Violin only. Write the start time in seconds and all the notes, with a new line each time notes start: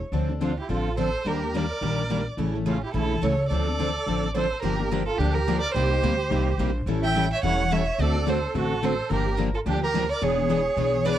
0.42 F4
0.60 G4
0.71 A4
0.99 C5
1.27 A#4
1.56 D5
2.67 F4
2.83 G4
2.94 A4
3.23 C#5
3.49 D5
4.37 C5
4.63 A#4
5.06 A4
5.18 G4
5.34 A#4
5.61 D5
5.74 C5
7.05 G5
7.33 E5
7.45 F#5
7.72 E5
8.01 D5
8.30 C5
8.58 A4
8.85 C5
9.13 A#4
9.55 A4
9.67 G4
9.84 A#4
10.12 D5
10.23 C#5
11.05 D5